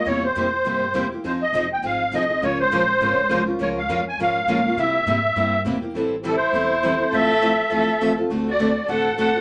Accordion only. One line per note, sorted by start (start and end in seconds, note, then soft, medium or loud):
0.07 0.24 C#5 medium
0.24 1.08 C5 medium
1.26 1.33 C5 medium
1.42 1.69 D#5 medium
1.73 1.84 G5 medium
1.86 2.14 F5 medium
2.14 2.43 D#5 medium
2.44 2.59 C#5 medium
2.61 3.44 C5 loud
3.62 3.69 C#5 medium
3.78 4.04 F5 medium
4.08 4.20 G#5 medium
4.22 4.80 F5 loud
4.79 5.62 E5 medium
6.27 6.35 A4 medium
6.37 7.16 C5 medium
7.14 7.72 E5 loud
7.74 8.15 E5 medium
8.51 8.90 D5 medium
8.89 9.16 F#5 medium
9.20 9.41 F#5 medium